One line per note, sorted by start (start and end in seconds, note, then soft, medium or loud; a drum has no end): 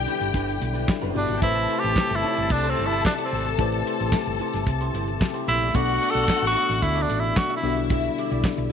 0.00 1.11 B2 medium
0.00 1.40 D3 medium
0.00 1.40 G3 medium
0.00 1.11 B3 medium
0.00 1.12 E4 medium
0.00 1.40 E4 medium
0.00 0.92 G4 loud
0.00 1.12 G4 medium
0.00 1.13 D5 medium
0.00 0.92 G5 loud
0.07 0.27 D4 medium
0.07 0.21 G4 medium
0.07 0.20 B4 medium
0.07 closed hi-hat medium
0.21 0.32 G1 medium
0.21 muted clean electric guitar stroke soft
0.21 closed hi-hat medium
0.34 0.57 G1 medium
0.34 0.55 D4 medium
0.34 0.48 G4 loud
0.34 0.47 B4 medium
0.34 kick medium
0.34 closed hi-hat medium
0.48 muted clean electric guitar stroke soft
0.48 closed hi-hat soft
0.61 0.84 B1 medium
0.61 muted clean electric guitar stroke soft
0.61 closed hi-hat medium
0.74 0.86 D4 soft
0.74 0.87 G4 medium
0.74 0.87 B4 medium
0.74 closed hi-hat soft
0.88 muted clean electric guitar stroke soft
0.88 kick loud
0.88 snare loud
0.88 clap medium
1.01 1.13 F#1 medium
1.01 1.09 B3 medium
1.01 1.13 D4 medium
1.01 1.14 G4 medium
1.01 1.15 B4 medium
1.01 1.09 B4 medium
1.01 closed hi-hat medium
1.09 1.16 C4 medium
1.09 1.16 C5 medium
1.14 1.27 G1 medium
1.14 1.42 B2 medium
1.14 1.42 B3 soft
1.14 1.30 D4 medium
1.14 1.22 D4 medium
1.14 1.42 D4 medium
1.14 1.42 F#4 soft
1.14 1.28 G4 medium
1.14 1.42 G4 soft
1.14 1.27 B4 medium
1.14 1.22 D5 medium
1.14 1.43 D5 medium
1.14 open hi-hat medium
1.22 1.29 E4 medium
1.22 1.29 E5 medium
1.28 1.40 G#1 medium
1.28 1.35 F#4 medium
1.28 1.35 F#5 medium
1.28 muted clean electric guitar stroke soft
1.28 closed hi-hat soft
1.34 1.42 G4 medium
1.34 1.42 G5 medium
1.41 1.65 A1 loud
1.41 5.70 C3 medium
1.41 7.59 A3 medium
1.41 3.54 A3 medium
1.41 1.62 E4 medium
1.41 3.54 E4 medium
1.41 1.81 E4 loud
1.41 5.70 G4 medium
1.41 1.63 G4 medium
1.41 3.55 G4 medium
1.41 5.38 A4 loud
1.41 3.55 B4 medium
1.41 1.63 C5 medium
1.41 3.55 C5 medium
1.41 5.37 A5 loud
1.41 kick loud
1.41 closed hi-hat medium
1.55 closed hi-hat soft
1.69 1.84 E4 medium
1.69 1.82 G4 medium
1.69 1.82 C5 medium
1.69 closed hi-hat medium
1.79 2.17 G4 loud
1.79 1.99 C5 medium
1.79 closed hi-hat soft
1.84 1.95 A1 medium
1.84 2.00 E4 medium
1.96 kick loud
1.96 snare loud
1.96 clap loud
2.10 2.21 G1 loud
2.10 muted clean electric guitar stroke soft
2.10 closed hi-hat soft
2.15 2.53 E4 medium
2.23 2.44 E4 medium
2.23 2.37 G4 medium
2.23 2.37 D5 medium
2.23 closed hi-hat medium
2.37 2.49 G1 medium
2.37 muted clean electric guitar stroke soft
2.37 closed hi-hat medium
2.50 2.73 C2 medium
2.50 2.71 D4 loud
2.50 muted clean electric guitar stroke soft
2.50 kick loud
2.50 closed hi-hat medium
2.63 2.75 E4 medium
2.63 2.76 G4 medium
2.63 2.77 C5 loud
2.63 closed hi-hat soft
2.70 2.88 C4 medium
2.76 3.00 G1 medium
2.76 2.93 E4 medium
2.76 2.90 G4 medium
2.76 2.89 C5 medium
2.76 closed hi-hat medium
2.86 3.04 E4 loud
2.91 muted clean electric guitar stroke soft
2.91 closed hi-hat soft
3.04 3.14 D4 medium
3.04 muted clean electric guitar stroke soft
3.04 kick loud
3.04 snare loud
3.04 clap medium
3.18 3.30 E4 medium
3.18 3.31 G4 medium
3.18 3.32 D5 medium
3.18 closed hi-hat medium
3.25 3.49 C4 medium
3.32 3.54 G#1 medium
3.32 muted clean electric guitar stroke soft
3.32 open hi-hat medium
3.45 muted clean electric guitar stroke medium
3.45 closed hi-hat soft
3.58 3.81 A1 loud
3.58 5.70 A3 medium
3.58 5.70 E4 medium
3.58 3.79 E4 medium
3.58 5.71 G4 medium
3.58 3.79 G4 medium
3.58 5.71 B4 medium
3.58 5.72 C5 medium
3.58 3.80 D5 medium
3.58 kick loud
3.58 closed hi-hat medium
3.72 closed hi-hat medium
3.86 4.00 E4 medium
3.86 3.99 G4 medium
3.86 3.98 C5 medium
3.86 closed hi-hat medium
3.99 4.11 A1 loud
3.99 4.16 E4 medium
3.99 4.15 G4 medium
3.99 4.15 C5 medium
3.99 closed hi-hat soft
4.12 kick loud
4.12 snare loud
4.12 clap medium
4.26 4.38 G1 loud
4.26 muted clean electric guitar stroke soft
4.26 closed hi-hat soft
4.39 4.60 E4 medium
4.39 4.54 G4 medium
4.39 4.53 C5 medium
4.39 closed hi-hat medium
4.53 4.65 G1 medium
4.53 muted clean electric guitar stroke soft
4.53 snare soft
4.53 closed hi-hat medium
4.67 4.89 C2 medium
4.67 muted clean electric guitar stroke soft
4.67 kick loud
4.67 closed hi-hat medium
4.81 4.93 E4 medium
4.81 4.94 G4 medium
4.81 4.95 C5 medium
4.81 closed hi-hat medium
4.94 5.16 G1 medium
4.94 5.10 E4 medium
4.94 5.08 G4 medium
4.94 5.07 C5 medium
4.94 closed hi-hat medium
5.08 muted clean electric guitar stroke soft
5.08 closed hi-hat soft
5.21 muted clean electric guitar stroke medium
5.21 kick loud
5.21 snare loud
5.21 clap medium
5.34 5.46 E4 medium
5.34 5.47 G4 medium
5.34 5.48 C5 medium
5.34 closed hi-hat medium
5.47 5.70 A#1 loud
5.47 5.54 B3 medium
5.47 5.63 E4 medium
5.47 5.77 E4 medium
5.47 5.61 G4 medium
5.47 5.54 B4 medium
5.47 5.60 C5 medium
5.47 open hi-hat medium
5.55 5.61 C4 medium
5.55 5.61 C5 medium
5.61 5.68 D4 medium
5.61 5.68 D5 medium
5.61 muted clean electric guitar stroke medium
5.61 closed hi-hat soft
5.68 5.75 E4 medium
5.68 5.75 E5 loud
5.73 5.97 B1 medium
5.73 7.59 B2 medium
5.73 7.61 B2 medium
5.73 7.59 B3 medium
5.73 7.61 D4 medium
5.73 7.60 D4 medium
5.73 5.94 F#4 medium
5.73 6.12 F#4 loud
5.73 7.60 F#4 medium
5.73 7.34 F#4 loud
5.73 5.95 A4 loud
5.73 7.60 A4 medium
5.73 5.95 D5 loud
5.73 7.34 F#5 loud
5.73 kick loud
5.73 closed hi-hat medium
5.88 closed hi-hat medium
6.01 6.15 F#4 medium
6.01 6.14 A4 medium
6.01 6.13 D5 medium
6.01 closed hi-hat medium
6.10 6.46 A4 loud
6.10 6.30 D5 medium
6.15 6.26 B1 medium
6.15 6.31 F#4 soft
6.15 6.31 A4 medium
6.15 closed hi-hat soft
6.28 kick loud
6.28 snare loud
6.28 clap loud
6.42 6.53 A1 loud
6.42 muted clean electric guitar stroke medium
6.42 closed hi-hat soft
6.47 6.84 F#4 loud
6.55 6.75 F#4 medium
6.55 6.68 A4 medium
6.55 6.68 E5 medium
6.55 closed hi-hat medium
6.69 6.80 A1 medium
6.69 muted clean electric guitar stroke medium
6.69 snare soft
6.69 closed hi-hat medium
6.82 7.05 D2 medium
6.82 7.03 E4 loud
6.82 muted clean electric guitar stroke soft
6.82 kick medium
6.82 closed hi-hat medium
6.95 7.07 F#4 medium
6.95 7.08 A4 medium
6.95 7.09 D5 medium
6.95 closed hi-hat medium
7.02 7.21 D4 medium
7.09 7.32 A1 medium
7.09 7.25 F#4 medium
7.09 7.23 A4 medium
7.09 7.22 D5 medium
7.09 closed hi-hat medium
7.20 7.39 E4 medium
7.20 muted clean electric guitar stroke medium
7.20 closed hi-hat soft
7.36 7.55 F#4 loud
7.36 muted clean electric guitar stroke soft
7.36 kick loud
7.36 snare loud
7.36 clap loud
7.50 7.63 F#4 medium
7.50 7.63 A4 medium
7.50 7.64 E5 medium
7.50 closed hi-hat medium
7.56 7.81 E4 medium
7.62 8.08 B1 loud
7.62 8.72 B2 medium
7.62 8.72 D3 medium
7.62 8.72 G3 medium
7.62 8.72 B3 medium
7.62 8.72 D4 medium
7.62 8.69 E4 loud
7.62 8.72 E4 medium
7.62 8.72 F#4 medium
7.62 8.72 G4 medium
7.62 8.69 E5 loud
7.62 muted clean electric guitar stroke soft
7.62 open hi-hat medium
7.77 muted clean electric guitar stroke medium
7.77 closed hi-hat soft
7.90 8.10 E4 medium
7.90 8.11 G4 loud
7.90 8.11 E5 medium
7.90 kick loud
7.90 closed hi-hat medium
8.03 closed hi-hat medium
8.18 8.31 E4 medium
8.18 8.30 G4 medium
8.18 8.29 D5 medium
8.18 closed hi-hat medium
8.30 8.42 B1 medium
8.30 8.47 E4 medium
8.30 8.47 G4 medium
8.30 8.46 D5 medium
8.30 closed hi-hat soft
8.44 kick loud
8.44 snare loud
8.44 clap loud
8.57 8.69 B1 loud
8.57 muted clean electric guitar stroke soft
8.57 closed hi-hat soft